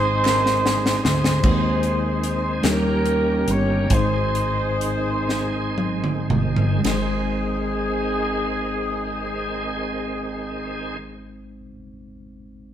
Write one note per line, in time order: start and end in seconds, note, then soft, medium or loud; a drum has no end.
0.00 1.00 G#1 medium
0.00 0.21 G#2 medium
0.00 1.38 G#3 medium
0.00 1.39 G#3 soft
0.00 1.39 C4 medium
0.00 1.40 C4 soft
0.00 1.01 D#4 medium
0.00 1.39 D#4 soft
0.00 1.40 D#4 medium
0.00 0.63 G#4 medium
0.00 1.39 G#4 medium
0.00 1.02 C5 loud
0.00 1.42 C5 medium
0.25 0.62 A#4 medium
0.25 snare medium
0.25 clap medium
0.46 snare medium
0.64 1.01 G#4 medium
0.64 snare medium
0.86 snare medium
1.03 1.41 D2 medium
1.03 2.60 D#4 medium
1.03 2.60 G#4 medium
1.03 2.59 C5 medium
1.03 snare medium
1.24 snare medium
1.43 2.60 D#2 medium
1.43 2.64 D#3 medium
1.43 2.61 D#3 soft
1.43 2.64 G#3 medium
1.43 2.65 G#3 soft
1.43 2.64 C4 soft
1.43 2.62 D#4 soft
1.43 2.65 G#4 medium
1.43 1.52 B4 soft
1.43 kick medium
1.43 crash medium
1.53 2.68 C5 medium
1.83 closed hi-hat soft
2.23 closed hi-hat medium
2.62 3.43 D#2 medium
2.62 3.87 D#3 medium
2.62 3.90 D#3 medium
2.62 3.90 G3 medium
2.62 3.91 A#3 soft
2.62 3.90 C#4 medium
2.62 3.91 C#4 medium
2.62 3.87 C#4 medium
2.62 3.89 D#4 medium
2.62 3.91 G4 medium
2.62 3.91 A#4 medium
2.62 3.48 A#4 medium
2.62 snare loud
2.62 closed hi-hat medium
2.66 3.88 G4 medium
3.06 closed hi-hat soft
3.47 3.87 G1 medium
3.47 3.92 C#5 medium
3.47 closed hi-hat medium
3.87 5.24 G#2 medium
3.87 6.78 G#3 medium
3.87 6.80 C4 medium
3.87 6.81 C4 soft
3.87 6.81 G#4 medium
3.87 closed hi-hat medium
3.91 6.26 G#1 loud
3.91 6.81 D#3 medium
3.91 6.81 G#3 soft
3.91 6.81 D#4 soft
3.91 6.27 D#4 medium
3.91 6.27 G#4 medium
3.91 6.82 C5 medium
3.91 6.31 C5 medium
3.91 kick medium
4.35 closed hi-hat soft
4.81 closed hi-hat medium
5.29 snare soft
5.78 high tom medium
6.04 mid tom medium
6.30 6.81 G1 medium
6.30 mid tom medium
6.56 floor tom medium
6.79 11.59 G#3 medium
6.83 11.65 G#1 medium
6.83 10.97 D#3 medium
6.83 10.97 G#3 medium
6.83 11.64 C4 medium
6.83 10.97 C4 medium
6.83 11.67 D#4 medium
6.83 10.97 G#4 medium
6.83 10.98 G#4 medium
6.83 snare medium
6.83 ride bell medium
6.92 11.70 C5 medium